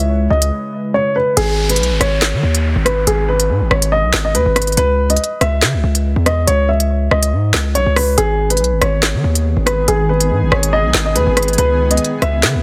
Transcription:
Already playing: C#2 C#3 G#3 E4 B4 E5
0.30 C#2 D#5
0.42 closed hi-hat
0.94 C#5
1.16 B4
1.37 G#1 G#4, closed hi-hat, downlifter
1.69 B4, closed hi-hat
1.76 B1, closed hi-hat
1.83 closed hi-hat
1.91 G#1
2.00 G#1 C#5, cross-stick, closed hi-hat
2.22 snare, clap, closed hi-hat
2.33 D#3
2.43 D#2
2.55 closed hi-hat
2.76 G#1
2.85 B4, cross-stick, closed hi-hat
3.07 G#1 G#4, closed hi-hat
3.28 B4
3.40 closed hi-hat
3.50 G#2
3.61 G#1
3.71 G#1 C#5, cross-stick
3.82 closed hi-hat
3.92 D#5
4.03 B1
4.13 G#1, snare, clap, closed hi-hat
4.25 D#5
4.35 D#2 B4, closed hi-hat
4.46 G#1
4.56 B4, cross-stick, closed hi-hat
4.62 closed hi-hat
4.67 closed hi-hat
4.72 closed hi-hat
4.77 C#2 B4, closed hi-hat
5.10 D#5, closed hi-hat
5.17 closed hi-hat
5.24 closed hi-hat
5.41 C#2 E5, cross-stick, closed hi-hat
5.62 C#3, snare, clap, closed hi-hat
5.74 C#2
5.84 C#2
5.95 closed hi-hat
6.16 E2
6.26 D#5, cross-stick, closed hi-hat
6.47 C#2 C#5, closed hi-hat
6.69 E5
6.80 closed hi-hat
7.11 C#2 D#5, cross-stick
7.23 closed hi-hat
7.33 G#2
7.54 C#2, snare, clap, closed hi-hat
7.75 B1 C#5, closed hi-hat
7.86 C#2
7.96 B4, cross-stick, open hi-hat
8.18 G#1 D#3 B3 G#4, closed hi-hat
8.50 B4, closed hi-hat
8.57 B1, closed hi-hat
8.64 closed hi-hat
8.72 G#1
8.81 G#1 C#5, cross-stick, closed hi-hat
9.03 snare, clap, closed hi-hat
9.14 D#3
9.24 D#2
9.35 closed hi-hat
9.57 G#1
9.66 B4, cross-stick, closed hi-hat
9.88 G#1 G#4, closed hi-hat
10.09 B4
10.20 closed hi-hat
10.30 G#2
10.42 G#1
10.52 G#1 C#5, cross-stick
10.63 closed hi-hat
10.73 D#5
10.84 B1
10.94 G#1, snare, clap, closed hi-hat
11.06 D#5
11.16 D#2 B4, closed hi-hat
11.27 G#1
11.37 B4, cross-stick, closed hi-hat
11.43 closed hi-hat
11.48 closed hi-hat
11.53 closed hi-hat
11.58 C#2 C#3 E4 B4, closed hi-hat
11.91 D#5, closed hi-hat
11.97 closed hi-hat
12.04 closed hi-hat
12.22 C#2 E5, cross-stick, closed hi-hat
12.43 C#3, snare, clap, closed hi-hat
12.55 C#2

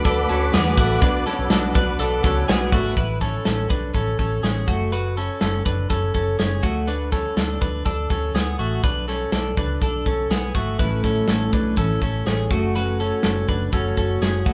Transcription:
Already playing: B4 F#5 D6
0.04 D2 A3 D4 F#4 A4 B4, kick, closed hi-hat
0.28 D2 A3 C#4 D4 F#4 A4 B4, closed hi-hat
0.53 E2 D3 F#3 A3 B3 D4 F#4 G#4 B4, snare, closed hi-hat
0.77 A1 A3 D4 F#4 B4, kick, open hi-hat
1.02 B2 F#3 B3 D4 F#4 B4, kick, closed hi-hat
1.26 B3 C#4 D4 F#4 A4 B4, snare, closed hi-hat
1.39 B1
1.50 B1 B2 F#3 B3 D4 F#4 A4 B4, snare, closed hi-hat
1.74 B1 B3 D4 F#4 B4, kick, closed hi-hat
1.98 B1 B3 D4 F#4 A4 B4, closed hi-hat
2.23 C#2 B3 C#4 D4 F#4 A4 B4, kick, closed hi-hat
2.47 B1 B2 F#3 B3 D4 F#4 G#4 B4, snare, closed hi-hat
2.71 G#1 A3 B3 D4 F#4 B4, kick, open hi-hat
2.97 A1 E4 B4, kick, closed hi-hat
3.21 C#4 A4, kick, snare, closed hi-hat
3.45 A1 C#4 A4, snare, closed hi-hat
3.70 B1 D4 B4, kick, closed hi-hat
3.94 A1 C#4 A4, kick, closed hi-hat
4.19 A1 C#4 A4, kick, closed hi-hat
4.43 A1 C#4 G#4, snare, closed hi-hat
4.68 F#1 A3 F#4, kick, closed hi-hat
4.92 F#4 B4, closed hi-hat
5.17 C#4 A4, closed hi-hat
5.41 F#1 C#4 A4, snare, closed hi-hat
5.65 F#1 D4 B4, kick, closed hi-hat
5.90 F#1 C#4 A4, kick, closed hi-hat
6.14 F#1 C#4 A4, kick, closed hi-hat
6.39 F#1 C#4 G#4, snare, closed hi-hat
6.63 D2 A3 F#4, kick, closed hi-hat
6.87 D4 B4, closed hi-hat
7.12 C#4 A4, kick, snare, closed hi-hat
7.37 D2 D4 A4, snare, closed hi-hat
7.61 D2 D4 B4, kick, closed hi-hat
7.85 D2 D4 A4, kick, closed hi-hat
8.10 D2 C#4 A4, kick, closed hi-hat
8.34 D2 B3 G#4, snare, closed hi-hat
8.59 A1 A3 F#4, closed hi-hat
8.84 B1 D4 B4, kick, closed hi-hat
9.08 C#4 A4, snare, closed hi-hat
9.32 B1 D4 A4, snare, closed hi-hat
9.57 C#2 D4 B4, kick, closed hi-hat
9.81 B1 D4 A4, kick, closed hi-hat
10.06 B1 C#4 A4, kick, closed hi-hat
10.30 B1 B3 G#4, snare, closed hi-hat
10.55 G#1 A3 F#4, kick, closed hi-hat
10.79 A1 A2 E3 A3 C#4 E4 B4, kick, closed hi-hat
10.83 A4
11.04 C#4 A4, kick, snare, closed hi-hat
11.28 A1 C#4 A4, snare, closed hi-hat
11.52 B1 D4 B4, kick, closed hi-hat
11.76 A1 A2 E3 A3 C#4 E4 A4, kick, closed hi-hat
12.01 A1 A3 C#4 E4 A4, kick, closed hi-hat
12.26 A1 C#4 G#4, snare, closed hi-hat
12.50 F#1 A3 C#4 F#4, kick, closed hi-hat
12.74 F#3 A3 C#4 F#4 B4, closed hi-hat
12.78 F#4
13.00 C#4 A4, closed hi-hat
13.23 F#1 C#4 A4, snare, closed hi-hat
13.48 F#1 D4 B4, kick, closed hi-hat
13.72 F#1 F#3 A3 C#4 F#4 A4, kick, closed hi-hat
13.97 F#1 C#4 A4, kick, closed hi-hat
14.21 F#1 C#4 G#4, snare, closed hi-hat
14.45 D2 A3 D4 F#4 B4, kick, closed hi-hat

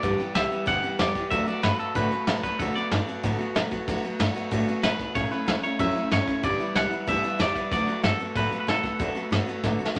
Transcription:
Already playing: D5
0.03 G1 G2 D3 E3 G3 B3 G4, kick, ride
0.18 E3 G3 B3 G4, ride
0.34 C2 E3 G3 B3 G4 E5, snare, ride
0.50 E3 G3 B3 G4, muted upright bass stroke, ride
0.66 D2 G2 D3 E3 G3 B3 G4 F#5, kick, ride
0.82 E3 G3 B3 G4, ride
0.99 E2 E3 G3 B3 G4 D5, snare, ride
1.15 E3 G3 B3 G4, kick, ride
1.30 D2 D3 F#3 A3 B3 F#4 E5, kick, ride
1.47 A3 B3 F#4 D5, ride
1.62 G2 F#3 A3 B3 F#4 B4, snare, ride
1.79 A3 B3 F#4 A4, ride
1.95 A2 D3 F#3 A3 B3 F#4 B4, kick, ride
2.11 A3 B3 F#4, ride
2.27 C3 F#3 A3 B3 F#4, snare, ride
2.43 A3 B3 F#4 B4, kick, ride
2.59 D2 D3 F#3 A3 B3 F#4 A4, kick, ride
2.75 A3 B3 F#4 D5, muted upright bass stroke, ride
2.91 G2 F#3 A3 B3 F#4, snare, ride
3.07 A3 B3 F#4, ride
3.23 A2 D3 F#3 A3 B3 F#4, kick, ride
3.39 A3 B3 F#4, muted upright bass stroke, ride
3.55 C3 F#3 A3 B3 F#4, snare, ride
3.71 A3 B3 F#4, muted upright bass stroke, kick, ride
3.88 D2 D3 F#3 A3 B3 F#4, kick, ride
4.03 A3 B3 F#4, ride
4.19 G2 F#3 A3 B3 F#4, snare, ride
4.35 A3 B3 F#4, ride
4.51 A2 D3 F#3 A3 B3 F#4, kick, ride
4.67 A3 B3 F#4, muted upright bass stroke, ride
4.83 C3 F#3 A3 B3 F#4 B4, snare, ride
4.98 A3 B3 F#4, muted upright bass stroke, kick, ride
5.15 A1 A2 F#3 A3 C#4 E4 C#5, kick, ride
5.31 A3 C#4 E4 B4, ride
5.47 D2 F#3 A3 C#4 E4, snare, ride
5.63 A3 C#4 E4 C#5, muted upright bass stroke, ride
5.79 E2 A2 F#3 A3 C#4 E4 E5, kick, ride
5.95 A3 C#4 E4, ride
6.11 G2 F#3 A3 C#4 E4 C#5, snare, ride
6.27 A3 C#4 E4, kick, ride
6.43 G1 G2 D3 E3 G3 B3 E4 D5, kick, ride
6.59 E3 G3 B3 E4, muted upright bass stroke, ride
6.75 C2 E3 G3 B3 E4 F#5, snare, ride
6.91 E3 G3 B3 E4, ride
7.07 D2 G2 D3 E3 G3 B3 E4 E5, kick, ride
7.23 E3 G3 B3 E4, muted upright bass stroke, ride
7.39 E2 E3 G3 B3 E4 D5, snare, ride
7.55 E3 G3 B3 E4, kick, ride
7.71 D2 D3 F#3 A3 B3 F#4 D5, kick, ride
7.87 A3 B3 F#4, ride
8.02 G2 F#3 A3 B3 F#4 A4, snare, ride
8.19 A3 B3 F#4, ride
8.35 A2 D3 F#3 A3 B3 F#4 B4, kick, ride
8.51 A3 B3 F#4, ride
8.60 B4
8.67 C3 F#3 A3 B3 F#4 A4, snare, ride
8.83 A3 B3 F#4, muted upright bass stroke, kick, ride
8.99 D2 D3 F#3 A3 B3 F#4, kick, ride
9.15 A3 B3 F#4, muted upright bass stroke, ride
9.31 G2 F#3 A3 B3 F#4, snare, ride
9.46 A3 B3 F#4, ride
9.64 A2 D3 F#3 A3 B3 F#4, kick, snare
9.79 A3 B3 F#4
9.85 snare
9.95 C3 F#3 A3, snare

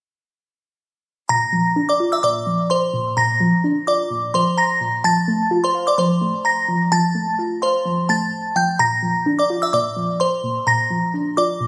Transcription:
1.29 A#2 A#5 A#6
1.53 F3
1.76 D4
1.89 D5 D6
2.00 F4
2.12 E5 E6
2.23 A#2 D5 D6
2.47 F3
2.70 C5 C6
2.94 A#2
3.17 A#2 A#5 A#6
3.40 F3
3.64 D4
3.87 F4 D5 D6
4.11 A#2
4.34 F3 C5 C6
4.58 A#5 A#6
4.81 A#2
5.04 F3 A5 A6
5.28 A3
5.51 F4
5.64 C5 C6
5.75 F5
5.87 D5 D6
5.98 F3 C5 C6
6.22 A3
6.45 A#5 A#6
6.68 F3
6.92 F3 A5 A6
7.15 A3
7.39 F4
7.62 C5 F5 C6
7.85 F3
8.09 A3 A5 A6
8.56 F3 G5 G6
8.79 A#2 A#5 A#6
9.03 F3
9.26 D4
9.39 D5 D6
9.50 F4
9.62 E5 E6
9.73 A#2 D5 D6
9.96 F3
10.20 C5 C6
10.43 A#2
10.67 A#2 A#5 A#6
10.90 F3
11.14 D4
11.37 F4 D5 D6
11.60 A#2

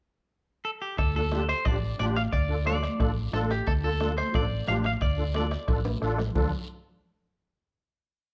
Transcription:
0.65 A4
0.82 G4
0.98 D2 A4, bombo low, bombo rim, high conga, high timbale, long guiro
1.15 D4 F4 A4, high conga
1.32 D4 F4 G4, bombo rim, high conga, high timbale, short guiro
1.49 C5, bombo rim, high timbale, short guiro
1.65 A1 D4 F4 G4 D5, bombo low, bombo rim, low conga, high timbale, long guiro
1.82 high conga
1.99 A1 D4 F4 G4 D5, bombo rim, high conga, high timbale, short guiro
2.16 F5, bombo rim, high timbale, short guiro
2.32 D2 D5, bombo low, bombo rim, high timbale, long guiro
2.49 D4 F4 A4
2.65 D4 F4 A4 D5, bombo rim, high conga, high timbale, short guiro
2.83 bombo rim, high conga, high timbale, short guiro
2.99 A1 D4 F4 A4, bombo low, bombo rim, low conga, high timbale, long guiro
3.17 high conga
3.33 A1 D4 F4 A4, bombo rim, high conga, high timbale, low timbale, short guiro
3.51 G4, bombo rim, high timbale, short guiro
3.67 D2 A4, bombo low, bombo rim, high timbale, long guiro
3.83 D4 F4 A4, high conga
4.00 D4 F4 A4, bombo rim, high conga, high timbale, short guiro
4.18 C5, bombo rim, high conga, high timbale, short guiro
4.33 A1 D4 F4 A4 D5, bombo low, bombo rim, low conga, high timbale, long guiro
4.51 high conga
4.67 A1 D4 F4 G4 F5, bombo rim, high conga, low conga, high timbale, low timbale, short guiro
4.84 F5, bombo rim, high timbale, short guiro
5.01 D2 D5, bombo low, bombo rim, high timbale, long guiro
5.18 D4 F4 A4
5.34 D4 F4 A4 D5, bombo rim, high conga, high timbale, short guiro
5.51 bombo rim, high timbale, short guiro
5.68 A1 D4 F4 A4, bombo low, bombo rim, low conga, high timbale, long guiro
5.85 high conga, high timbale
6.02 A1 D4 F4 A4, bombo rim, short guiro
6.18 bombo rim, low conga, low timbale, short guiro
6.35 D2 D4 F4 A4, bombo low, low conga, low timbale, long guiro

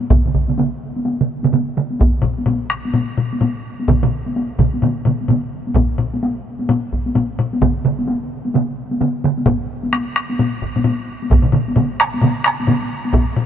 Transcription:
0.01 taiko high
0.10 taiko, taiko mid, taiko high
0.26 taiko mid
0.34 taiko, taiko mid
0.48 taiko mid, taiko high
0.58 taiko mid, taiko high
0.96 taiko high
1.05 taiko high
1.21 taiko mid
1.43 taiko mid, taiko high
1.52 taiko mid, taiko high
1.77 taiko mid
1.90 taiko high
2.00 taiko, taiko high
2.22 taiko, taiko low-mid
2.38 taiko high
2.46 taiko low-mid, taiko high
2.70 taiko rim
2.85 taiko high
2.94 taiko low-mid, taiko high
3.18 taiko low-mid
3.33 taiko high
3.41 taiko low-mid, taiko high
3.80 taiko high
3.88 taiko, taiko low-mid, taiko mid, taiko high
4.03 taiko low-mid, taiko mid
4.26 taiko high
4.36 taiko high
4.58 taiko, taiko low-mid, taiko mid
4.74 taiko high
4.82 taiko low-mid, taiko mid, taiko high
5.05 taiko low-mid, taiko mid, taiko high
5.21 taiko high
5.28 taiko low-mid, taiko mid, taiko high
5.67 taiko high
5.75 taiko, taiko low-mid, taiko high
5.98 taiko low-mid
6.14 taiko high
6.23 taiko high
6.59 taiko high
6.69 taiko low-mid, taiko high
6.92 taiko
7.06 taiko high
7.15 taiko low-mid, taiko high
7.39 taiko low-mid
7.53 taiko high
7.62 taiko, taiko mid, taiko high
7.85 taiko mid
7.99 taiko high
8.08 taiko high
8.45 taiko high
8.54 taiko mid, taiko high
8.91 taiko high
9.01 taiko mid, taiko high
9.24 taiko mid
9.37 taiko high
9.46 taiko, taiko low-mid, taiko high
9.83 taiko high
9.93 taiko rim, taiko high
10.16 taiko rim
10.30 taiko high
10.39 taiko low-mid, taiko high
10.62 taiko
10.76 taiko low-mid, taiko high
10.84 taiko low-mid, taiko high
11.22 taiko high
11.30 taiko, taiko low-mid, taiko mid, taiko high
11.42 taiko low-mid, taiko mid
11.52 taiko low-mid, taiko mid
11.68 taiko high
11.76 taiko low-mid, taiko mid, taiko high
12.00 taiko rim
12.14 taiko high
12.21 taiko low-mid, taiko mid, taiko high
12.44 taiko rim
12.60 taiko high
12.67 taiko low-mid, taiko mid, taiko high
12.82 taiko high
13.05 taiko high
13.13 taiko, taiko low-mid, taiko high
13.37 taiko low-mid

